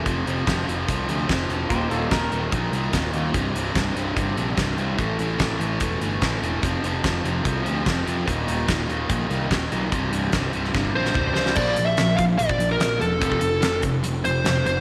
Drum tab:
CC |----------------|----------------|----------------|----------------|
HH |x-x-x-x-x-x-x-x-|x-x-x-x-x-x-x-x-|x-x-x-x-x-x-x-x-|x-x-x-x-x-x-x-x-|
SD |----o-------o---|----o-------o---|----o-------o---|----o-------o---|
T2 |----------------|----------------|----------------|----------------|
BD |o---o---o---o---|o---o---o---o---|o---o---o---o---|o---o---o---o---|

CC |----------------|----------------|----------------|x---------------|
HH |x-x-x-x-x-x-x-x-|x-x-x-x-x-x-x-x-|x-x-x-x---------|--x-x-x-x-x-x-x-|
SD |----o-------o---|----o-------o---|----o--oo--o--oo|----o-------o---|
T2 |----------------|----------------|------------o---|----------------|
BD |o---o---o---o---|o---o---o---o---|o---o---oo--o---|o-----o--o------|

CC |----------------|
HH |x-x-x-x-x-x-x-x-|
SD |----o-------o---|
T2 |----------------|
BD |oo----o---------|